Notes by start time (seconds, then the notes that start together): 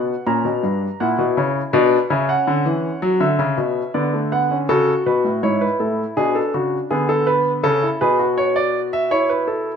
Already playing: B2 B3 F#5
0.26 A#2 C#4 A#5
0.45 B2
0.63 G2 D4
1.00 A#2 E4 F#5
1.18 B2
1.37 C#3 C#5
1.73 B2 D4 D5
2.10 C#3 C#4 E5
2.29 F#5
2.47 D3
2.65 E3
3.02 F#3
3.20 D3 E5
3.39 C#3
3.57 B2
3.94 D3 B3 D5
4.13 A3
4.32 B3 F#5
4.51 C#4
4.69 C#3 F#4 A4
5.06 B2 B4
5.24 A2
5.43 G#2 E4 C#5
5.61 B4
5.80 A2 A4
6.17 B2 D4 G#4
6.35 A4
6.54 C#3 F#4
6.91 D3 B3 G#4
7.09 A4
7.27 B4
7.63 C#3 C#4 A4
7.82 E4
8.01 B2 G#4 B4
8.19 F#4
8.38 C#5
8.56 D5
8.93 E5
9.11 E4 C#5
9.29 B4
9.48 A4